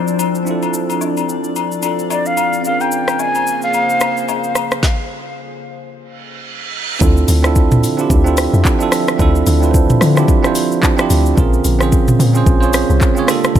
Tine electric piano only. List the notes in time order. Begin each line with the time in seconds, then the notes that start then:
Already playing: C4 D4 E4 F4 A4
0.43 C4 D4 E4
0.49 F4 A4
1.81 C4 D4 F4 A4
2.61 C4 C#4
2.65 F4 G#4 A#4
6.99 C4 D4 E4 F4 A4
7.43 C4 D4 E4 F4 A4
7.97 C4 D4 E4 F4
8.01 G4
8.24 C4 D4 E4 F4
8.28 A4
8.79 C4 D4 E4 F4 A4
9.18 C4 D4 E4 F4 A4
9.61 C4 D4 E4 F4
9.65 B4
9.71 C5
10.15 C4 D4 E4 F4 G4
10.43 C4 D4 E4 F4 C5
10.97 C4 D4 E4 F4
11.01 G4
11.35 C4 C#4 F4 G#4
11.40 A#4
11.79 C4 C#4 F4 G#4
11.83 C5
12.33 C4 C#4 F4 G#4 C5
12.61 C#4 F4 G#4 C5 C#5
13.15 C4 C#4 F4 G#4
13.19 C#5
13.27 A#3 D4 F4 G4 A4